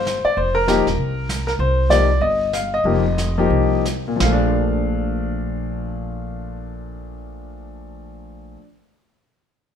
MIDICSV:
0, 0, Header, 1, 5, 480
1, 0, Start_track
1, 0, Key_signature, -2, "major"
1, 0, Tempo, 307377
1, 570, Time_signature, 4, 2, 24, 8
1, 3451, Tempo, 323799
1, 5371, Tempo, 359281
1, 13714, End_track
2, 0, Start_track
2, 0, Title_t, "Grand piano"
2, 0, Program_c, 0, 0
2, 0, Note_on_c, 0, 72, 88
2, 342, Note_off_c, 0, 72, 0
2, 386, Note_on_c, 0, 74, 91
2, 576, Note_off_c, 0, 74, 0
2, 580, Note_on_c, 0, 72, 87
2, 849, Note_off_c, 0, 72, 0
2, 854, Note_on_c, 0, 70, 98
2, 1054, Note_on_c, 0, 53, 68
2, 1063, Note_on_c, 0, 63, 62
2, 1065, Note_on_c, 0, 58, 63
2, 1074, Note_on_c, 0, 67, 80
2, 1316, Note_off_c, 0, 53, 0
2, 1320, Note_off_c, 0, 63, 0
2, 1322, Note_off_c, 0, 58, 0
2, 1326, Note_off_c, 0, 67, 0
2, 2234, Note_off_c, 0, 70, 0
2, 2297, Note_on_c, 0, 70, 82
2, 2375, Note_off_c, 0, 70, 0
2, 2495, Note_on_c, 0, 72, 90
2, 2959, Note_on_c, 0, 53, 50
2, 2971, Note_on_c, 0, 74, 98
2, 2973, Note_on_c, 0, 63, 43
2, 2974, Note_on_c, 0, 58, 44
2, 2978, Note_on_c, 0, 67, 52
2, 2985, Note_off_c, 0, 72, 0
2, 3230, Note_off_c, 0, 53, 0
2, 3237, Note_off_c, 0, 58, 0
2, 3237, Note_off_c, 0, 63, 0
2, 3239, Note_off_c, 0, 67, 0
2, 3458, Note_on_c, 0, 75, 87
2, 3467, Note_off_c, 0, 74, 0
2, 3888, Note_off_c, 0, 75, 0
2, 3934, Note_on_c, 0, 77, 73
2, 4224, Note_off_c, 0, 77, 0
2, 4234, Note_on_c, 0, 75, 87
2, 4399, Note_on_c, 0, 53, 59
2, 4404, Note_on_c, 0, 58, 54
2, 4413, Note_on_c, 0, 67, 65
2, 4416, Note_on_c, 0, 63, 57
2, 4661, Note_off_c, 0, 53, 0
2, 4663, Note_off_c, 0, 58, 0
2, 4668, Note_off_c, 0, 67, 0
2, 4669, Note_off_c, 0, 63, 0
2, 5182, Note_on_c, 0, 53, 71
2, 5185, Note_on_c, 0, 58, 66
2, 5193, Note_on_c, 0, 63, 65
2, 5200, Note_on_c, 0, 67, 72
2, 5789, Note_off_c, 0, 75, 0
2, 5796, Note_off_c, 0, 53, 0
2, 5797, Note_off_c, 0, 58, 0
2, 5801, Note_off_c, 0, 63, 0
2, 5804, Note_off_c, 0, 67, 0
2, 6136, Note_on_c, 0, 46, 63
2, 6246, Note_on_c, 0, 53, 58
2, 6318, Note_on_c, 0, 77, 78
2, 6352, Note_on_c, 0, 57, 56
2, 6467, Note_on_c, 0, 62, 71
2, 12079, Note_off_c, 0, 46, 0
2, 12117, Note_off_c, 0, 77, 0
2, 12134, Note_off_c, 0, 53, 0
2, 12187, Note_off_c, 0, 57, 0
2, 12245, Note_off_c, 0, 62, 0
2, 13714, End_track
3, 0, Start_track
3, 0, Title_t, "Upright bass"
3, 0, Program_c, 1, 32
3, 0, Note_on_c, 1, 31, 76
3, 328, Note_off_c, 1, 31, 0
3, 575, Note_on_c, 1, 29, 81
3, 1292, Note_off_c, 1, 29, 0
3, 1353, Note_on_c, 1, 28, 65
3, 1510, Note_off_c, 1, 28, 0
3, 1520, Note_on_c, 1, 36, 79
3, 2434, Note_off_c, 1, 36, 0
3, 2482, Note_on_c, 1, 36, 89
3, 3401, Note_off_c, 1, 36, 0
3, 3446, Note_on_c, 1, 31, 80
3, 4341, Note_off_c, 1, 31, 0
3, 4384, Note_on_c, 1, 29, 85
3, 5318, Note_off_c, 1, 29, 0
3, 5366, Note_on_c, 1, 36, 82
3, 6255, Note_off_c, 1, 36, 0
3, 6303, Note_on_c, 1, 34, 89
3, 12109, Note_off_c, 1, 34, 0
3, 13714, End_track
4, 0, Start_track
4, 0, Title_t, "Muted upright bass strokes"
4, 377, Note_on_c, 9, 29, 44
4, 533, Note_off_c, 9, 29, 0
4, 13714, End_track
5, 0, Start_track
5, 0, Title_t, "Drums"
5, 101, Note_on_c, 9, 38, 60
5, 104, Note_on_c, 9, 44, 46
5, 258, Note_off_c, 9, 38, 0
5, 261, Note_off_c, 9, 44, 0
5, 586, Note_on_c, 9, 25, 50
5, 1063, Note_on_c, 9, 38, 57
5, 1066, Note_on_c, 9, 44, 53
5, 1219, Note_off_c, 9, 38, 0
5, 1222, Note_off_c, 9, 44, 0
5, 1358, Note_on_c, 9, 38, 43
5, 1514, Note_off_c, 9, 38, 0
5, 1542, Note_off_c, 9, 25, 0
5, 1542, Note_on_c, 9, 25, 46
5, 2018, Note_on_c, 9, 38, 59
5, 2021, Note_on_c, 9, 44, 59
5, 2174, Note_off_c, 9, 38, 0
5, 2177, Note_off_c, 9, 44, 0
5, 2311, Note_on_c, 9, 38, 39
5, 2467, Note_off_c, 9, 38, 0
5, 2496, Note_off_c, 9, 25, 0
5, 2496, Note_on_c, 9, 25, 56
5, 2976, Note_on_c, 9, 38, 57
5, 2979, Note_on_c, 9, 44, 51
5, 3132, Note_off_c, 9, 38, 0
5, 3135, Note_off_c, 9, 44, 0
5, 3468, Note_off_c, 9, 25, 0
5, 3468, Note_on_c, 9, 25, 50
5, 3930, Note_on_c, 9, 38, 59
5, 3933, Note_on_c, 9, 44, 58
5, 4078, Note_off_c, 9, 38, 0
5, 4081, Note_off_c, 9, 44, 0
5, 4395, Note_off_c, 9, 25, 0
5, 4395, Note_on_c, 9, 25, 49
5, 4888, Note_on_c, 9, 38, 51
5, 4891, Note_on_c, 9, 44, 42
5, 5036, Note_off_c, 9, 38, 0
5, 5039, Note_off_c, 9, 44, 0
5, 5382, Note_off_c, 9, 25, 0
5, 5382, Note_on_c, 9, 25, 56
5, 5838, Note_on_c, 9, 38, 58
5, 5840, Note_on_c, 9, 44, 50
5, 5971, Note_off_c, 9, 38, 0
5, 5974, Note_off_c, 9, 44, 0
5, 6302, Note_on_c, 9, 38, 92
5, 6436, Note_off_c, 9, 38, 0
5, 6679, Note_off_c, 9, 25, 0
5, 13714, End_track
0, 0, End_of_file